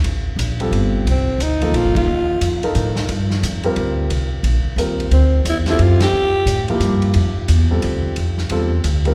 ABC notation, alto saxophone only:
X:1
M:3/4
L:1/8
Q:"Swing" 1/4=177
K:Dphr
V:1 name="Alto saxophone"
z6 | C2 E2 F F- | F3 z3 | z6 |
z6 | C2 =E E F G- | G3 z3 | z6 |
z6 |]